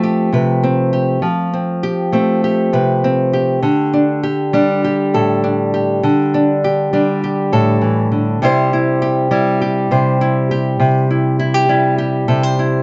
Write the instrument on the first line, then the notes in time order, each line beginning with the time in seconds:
nylon-string guitar
Already playing: F3 A3 C4
0.03 G4
0.33 C3 B4
0.63 C4
0.93 G4
1.22 F3
1.53 C4
1.83 G4
2.12 A3 C4
2.44 G4
2.73 C3 B4
3.04 C4
3.33 G4
3.63 D3
3.93 D4
4.23 G4
4.53 G3 D4
4.84 G4
5.14 A2 A4
5.44 D4
5.74 G4
6.03 D3
6.34 D4
6.64 G4
6.93 G3 D4
7.24 G4
7.52 A2 A4
7.81 E3
8.12 D3
8.42 C3 G3 E4 G4 C5
8.73 E4
9.02 G4
9.31 G3 E4
9.62 G4
9.91 C3 C5
10.21 E4
10.51 G4
10.80 C3
11.11 E4
11.39 E4
11.54 G4
11.69 G3 E4
11.98 G4
12.28 C3 A4
12.43 C5
12.59 E4